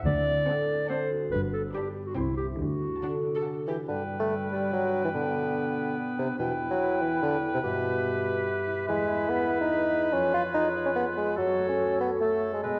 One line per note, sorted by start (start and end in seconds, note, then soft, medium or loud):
0.00 0.25 C4 soft
0.00 0.67 C5 soft
0.05 0.39 D2 medium
0.05 1.33 D3 medium
0.05 0.88 D5 loud
0.26 1.33 C4 soft
0.47 0.79 C4 medium
0.47 0.88 A4 soft
0.47 0.79 F#5 soft
0.47 0.79 A5 soft
0.68 1.33 C5 soft
0.89 1.21 C4 medium
0.89 1.33 A4 soft
0.89 1.10 C5 medium
0.89 1.21 F#5 medium
0.89 1.21 A5 medium
1.11 1.34 F#4 soft
1.31 1.65 G1 medium
1.31 1.65 G2 medium
1.31 2.18 G2 medium
1.31 1.41 B4 medium
1.53 2.18 B3 soft
1.53 1.62 A4 medium
1.74 2.06 D4 soft
1.74 1.88 G4 medium
1.74 2.05 G5 soft
1.74 2.06 B5 soft
1.95 2.18 B4 soft
2.06 2.15 F#4 medium
2.15 2.50 C2 medium
2.15 2.61 C3 soft
2.15 2.51 C3 medium
2.15 2.49 C4 soft
2.15 2.36 E4 medium
2.15 2.48 G5 soft
2.15 2.49 C6 soft
2.37 2.61 E4 soft
2.37 2.47 G4 medium
2.37 2.61 G4 soft
2.59 2.93 D2 medium
2.59 3.90 D3 soft
2.59 2.94 D3 medium
2.59 3.64 F#4 medium
2.81 4.91 D4 soft
3.02 3.11 D4 soft
3.02 3.45 A4 soft
3.02 3.34 F#5 soft
3.02 3.34 A5 soft
3.24 6.40 D5 soft
3.35 3.43 A4 soft
3.45 3.90 A4 soft
3.45 3.77 F#5 soft
3.45 3.78 A5 soft
3.67 3.77 E3 medium
3.67 3.90 F#4 soft
3.67 3.75 G4 soft
3.88 5.15 G2 soft
3.88 4.02 D3 soft
3.88 5.09 G3 medium
3.88 6.35 B4 medium
3.88 6.35 G5 medium
4.09 5.33 B3 soft
4.20 4.34 A3 medium
4.51 4.72 G3 medium
4.51 5.74 B4 soft
4.72 5.03 F#3 medium
4.72 5.54 G4 soft
4.92 6.16 D4 soft
5.05 5.09 E3 medium
5.14 6.41 B2 soft
5.14 5.96 D3 medium
5.14 6.36 B3 medium
5.34 6.58 B3 soft
5.55 5.95 G4 soft
5.76 7.00 B4 soft
5.96 6.79 G4 soft
6.17 6.28 C3 medium
6.17 6.40 D4 soft
6.38 7.65 E2 medium
6.38 6.53 B2 medium
6.38 7.61 E4 medium
6.38 8.83 B4 medium
6.38 7.61 G5 medium
6.59 7.83 B3 soft
6.71 7.03 F#3 medium
6.81 7.21 G4 soft
7.01 7.22 E3 medium
7.01 8.24 B4 soft
7.22 7.37 D3 medium
7.22 8.04 G4 soft
7.43 8.66 E4 soft
7.54 7.58 C3 medium
7.63 8.90 G2 medium
7.63 8.45 B2 medium
7.63 8.85 G4 medium
7.63 10.14 E5 medium
7.84 9.07 B3 medium
8.05 8.45 G4 medium
8.26 9.49 B4 soft
8.46 8.89 G4 medium
8.67 9.91 E4 soft
8.87 10.14 E2 medium
8.87 9.31 G#3 medium
8.87 10.10 E4 medium
8.87 11.33 B4 medium
9.09 10.32 B3 soft
9.29 9.60 B3 medium
9.29 9.70 G#4 medium
9.50 10.73 B4 medium
9.60 10.14 D#4 medium
9.71 10.53 G#4 soft
10.12 11.39 F2 medium
10.12 10.33 C#4 medium
10.12 11.35 F4 medium
10.12 11.14 C#5 medium
10.33 11.39 B3 medium
10.33 10.43 F4 medium
10.54 10.68 D#4 medium
10.54 10.94 G#4 medium
10.75 11.39 B4 soft
10.85 10.90 C#4 medium
10.95 11.05 B3 medium
10.95 11.39 G#4 soft
11.16 11.39 G#3 medium
11.16 12.41 C#4 soft
11.36 12.65 F#2 medium
11.36 11.68 F#3 medium
11.36 12.23 F#4 medium
11.36 12.04 A4 medium
11.36 12.17 C#5 medium
11.58 12.65 A3 soft
11.69 11.99 C#4 medium
11.79 12.20 F#4 soft
12.00 12.09 B3 medium
12.00 12.65 A4 soft
12.21 12.52 A3 medium
12.21 12.51 A3 soft
12.21 12.79 F#4 soft
12.21 12.63 A4 soft
12.21 12.65 C#5 soft
12.42 12.65 C#4 soft
12.53 12.62 G#3 medium
12.63 12.79 B2 soft
12.63 12.79 G#3 medium
12.63 12.79 B3 soft
12.63 12.79 B4 soft
12.63 12.79 D#5 soft